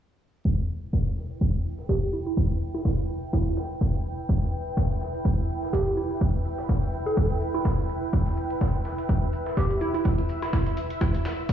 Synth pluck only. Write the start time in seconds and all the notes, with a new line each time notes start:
1.89 G4
2.13 E4
2.26 E4
2.74 E4
2.85 E4
3.33 E4
5.73 G4
5.97 E4
6.10 E4
7.06 A4
7.54 E4
7.65 E4
9.57 G4
9.81 E4
9.94 E4
10.42 E4
10.53 E4
11.01 E4